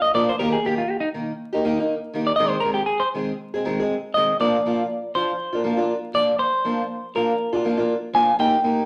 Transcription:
0.02 0.14 D#5 medium
0.14 0.30 F3 medium
0.14 0.30 A#3 medium
0.14 0.31 D4 medium
0.14 0.31 F4 medium
0.14 0.28 D5 medium
0.29 0.39 C5 medium
0.39 0.55 D#3 medium
0.39 0.56 A#3 medium
0.39 0.56 D#4 medium
0.39 0.56 G4 medium
0.39 0.52 A#4 medium
0.52 0.64 G#4 medium
0.65 0.81 D#3 medium
0.65 0.81 A#3 medium
0.65 0.82 D#4 medium
0.65 0.78 G4 medium
0.65 0.82 G4 medium
0.78 0.91 F4 medium
0.91 1.00 G4 medium
1.00 1.08 D#4 medium
1.14 1.31 D#3 medium
1.14 1.31 A#3 medium
1.14 1.31 D#4 medium
1.53 1.63 A#3 medium
1.53 1.64 D#4 medium
1.53 1.65 G4 medium
1.64 1.78 D#3 medium
1.64 1.78 A#3 medium
1.64 1.78 D#4 medium
1.64 1.78 G4 medium
1.79 1.94 A#3 medium
1.79 1.94 D#4 medium
1.79 muted steel-string acoustic guitar stroke medium
2.13 2.30 D#3 medium
2.13 2.31 A#3 medium
2.13 2.31 D#4 medium
2.13 2.31 G4 medium
2.27 2.36 D5 medium
2.36 2.55 D#3 medium
2.36 2.56 G#3 medium
2.36 2.56 C4 medium
2.36 2.49 D#5 medium
2.40 2.56 G#4 medium
2.49 2.63 C5 medium
2.60 2.81 D#3 medium
2.60 2.74 A#4 medium
2.65 2.81 G#3 medium
2.65 2.82 C4 medium
2.65 2.81 G#4 medium
2.74 2.86 G4 medium
2.86 3.01 G#4 medium
3.00 3.08 C5 medium
3.14 3.31 D#3 medium
3.14 3.31 G#3 medium
3.14 3.31 C4 medium
3.14 3.32 G#4 medium
3.54 3.64 G#3 soft
3.54 3.65 C4 medium
3.54 3.66 G#4 medium
3.65 3.79 D#3 medium
3.65 3.79 G#3 medium
3.65 3.79 C4 medium
3.65 3.78 G#4 medium
3.80 3.95 G#3 soft
3.80 3.94 C4 medium
3.80 3.94 G#4 medium
4.14 4.31 D#3 medium
4.14 4.32 G#3 medium
4.14 4.32 C4 medium
4.14 4.32 G#4 medium
4.14 4.39 D#5 medium
4.40 4.56 F3 medium
4.40 4.56 A#3 medium
4.40 4.56 D4 medium
4.40 4.57 F4 medium
4.40 5.12 D5 medium
4.65 4.81 F3 soft
4.65 4.82 A#3 medium
4.65 4.82 D4 medium
4.65 4.82 F4 medium
5.15 5.31 F3 medium
5.15 5.31 D4 medium
5.15 5.32 F4 medium
5.15 5.62 C5 medium
5.15 muted steel-string acoustic guitar stroke medium
5.53 5.63 A#3 soft
5.53 5.65 D4 medium
5.53 5.64 F4 medium
5.64 5.78 F3 medium
5.64 5.77 A#3 medium
5.64 5.77 D4 medium
5.64 5.75 F4 medium
5.76 5.93 A#3 medium
5.76 5.93 D4 medium
5.76 5.92 F4 medium
6.14 6.31 F3 medium
6.14 6.31 A#3 medium
6.14 6.31 D4 medium
6.14 6.31 F4 medium
6.14 6.39 D5 loud
6.39 7.11 C5 medium
6.65 6.81 F3 medium
6.65 6.81 A#3 medium
6.65 6.81 D4 medium
6.65 6.82 F4 medium
7.15 7.31 F3 medium
7.15 7.32 A#3 medium
7.15 7.32 D4 medium
7.15 7.32 F4 medium
7.15 7.62 A#4 medium
7.53 7.64 A#3 soft
7.53 7.65 D4 soft
7.53 7.65 F4 medium
7.64 7.78 F3 medium
7.64 7.78 A#3 medium
7.64 7.77 D4 medium
7.64 7.76 F4 medium
7.77 7.94 A#3 medium
7.77 7.93 D4 medium
7.77 7.93 F4 medium
8.13 8.30 F3 medium
8.13 8.31 A#3 medium
8.13 8.31 D4 medium
8.13 8.31 F4 medium
8.13 8.39 G#5 loud
8.39 8.56 A#3 medium
8.39 8.56 D#4 medium
8.39 8.56 G4 medium
8.39 8.86 G5 medium
8.64 8.81 A#3 medium
8.64 8.81 D#4 medium
8.64 8.82 G4 medium

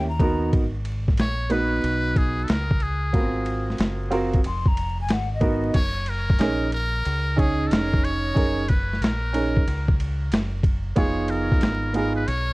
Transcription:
0.00 0.50 D#2 medium
0.08 0.51 A#5 medium
0.20 0.62 B3 medium
0.20 0.62 D#4 medium
0.20 0.62 F#4 medium
0.20 0.63 A#4 medium
0.20 kick medium
0.20 ride medium
0.53 1.16 G#1 loud
0.53 kick loud
0.53 ride medium
0.85 ride medium
1.08 kick medium
1.08 snare soft
1.17 1.81 A#1 medium
1.17 1.53 C#5 medium
1.17 snare medium
1.17 hi-hat pedal soft
1.17 ride medium
1.50 2.44 B3 medium
1.50 2.44 D#4 medium
1.50 2.44 F#4 medium
1.50 2.19 B4 medium
1.50 2.45 B4 medium
1.50 ride medium
1.84 2.46 B1 medium
1.84 ride medium
2.16 2.46 G#4 medium
2.16 kick medium
2.16 ride medium
2.44 2.51 A4 medium
2.44 hi-hat pedal medium
2.44 ride medium
2.50 3.11 C#2 medium
2.50 2.84 A#4 medium
2.50 snare loud
2.71 kick medium
2.80 3.80 G#4 medium
2.80 ride medium
3.13 3.76 G#1 medium
3.13 3.22 B3 medium
3.13 4.07 F4 medium
3.13 4.08 F#4 medium
3.13 4.08 A#4 medium
3.13 kick loud
3.13 ride medium
3.19 4.09 C4 medium
3.46 ride medium
3.70 snare soft
3.78 4.41 F#1 medium
3.78 snare medium
3.78 hi-hat pedal soft
3.78 ride medium
4.10 4.37 C4 medium
4.10 4.37 F4 medium
4.10 4.38 F#4 medium
4.10 4.38 A#4 medium
4.10 ride medium
4.33 kick medium
4.33 ride soft
4.44 5.10 F1 medium
4.44 4.69 C6 medium
4.44 ride medium
4.66 4.98 A#5 medium
4.66 kick medium
4.77 ride medium
5.01 5.15 G#5 medium
5.09 5.72 G#1 medium
5.09 snare loud
5.09 hi-hat pedal medium
5.09 ride medium
5.13 5.32 F#5 medium
5.34 5.74 D#5 medium
5.41 5.74 B3 medium
5.41 5.75 D#4 medium
5.41 5.75 F#4 medium
5.41 5.75 A#4 medium
5.41 kick medium
5.41 ride medium
5.74 6.37 F#1 medium
5.74 6.11 C#5 loud
5.74 kick loud
5.74 crash medium
5.74 ride medium
6.06 6.74 A#4 loud
6.06 ride medium
6.30 kick medium
6.30 snare soft
6.39 7.03 A#1 loud
6.39 6.66 C#4 medium
6.39 6.66 D#4 medium
6.39 6.66 G#4 medium
6.39 6.67 A#4 medium
6.39 snare loud
6.39 hi-hat pedal soft
6.39 ride medium
6.72 7.41 A#4 loud
6.72 ride medium
7.05 7.68 C#2 medium
7.05 ride medium
7.36 8.31 C#4 medium
7.36 8.31 D#4 medium
7.36 8.31 G#4 medium
7.36 7.69 G#4 medium
7.36 8.32 C#5 medium
7.36 kick loud
7.36 ride medium
7.67 7.73 A4 medium
7.71 8.33 F1 medium
7.71 8.06 A#4 medium
7.71 snare loud
7.71 hi-hat pedal medium
7.71 ride medium
7.94 kick medium
8.04 8.70 C#5 loud
8.04 ride medium
8.34 8.98 F#1 medium
8.34 8.61 C#4 medium
8.34 8.62 D#4 medium
8.34 8.62 G#4 medium
8.34 8.62 A#4 medium
8.34 kick loud
8.34 ride medium
8.68 9.04 B4 medium
8.68 kick medium
8.68 ride medium
8.93 snare soft
9.01 9.63 A#1 medium
9.01 10.00 A#4 medium
9.01 snare loud
9.01 hi-hat pedal soft
9.01 ride medium
9.33 9.59 C#4 medium
9.33 9.60 D#4 medium
9.33 9.60 G#4 medium
9.33 9.60 A#4 medium
9.33 ride medium
9.57 kick medium
9.67 10.29 C#2 medium
9.67 ride medium
9.88 kick loud
10.00 ride medium
10.32 10.94 F#1 medium
10.32 snare loud
10.32 hi-hat pedal medium
10.32 ride medium
10.63 kick loud
10.63 ride medium
10.96 11.59 F1 loud
10.96 11.90 B3 medium
10.96 11.90 D#4 medium
10.96 11.90 F4 medium
10.96 11.91 G#4 medium
10.96 11.32 C#5 medium
10.96 kick loud
10.96 ride medium
11.28 11.95 A#4 medium
11.28 ride medium
11.52 kick medium
11.52 snare soft
11.61 12.24 G#1 loud
11.61 snare loud
11.61 hi-hat pedal soft
11.61 ride medium
11.94 12.20 B3 medium
11.94 12.20 D#4 medium
11.94 12.21 F4 medium
11.94 12.21 G#4 medium
11.94 12.16 A#4 medium
11.94 ride medium
12.16 12.30 B4 medium
12.28 12.53 B1 medium
12.28 12.53 C#5 loud
12.28 ride medium

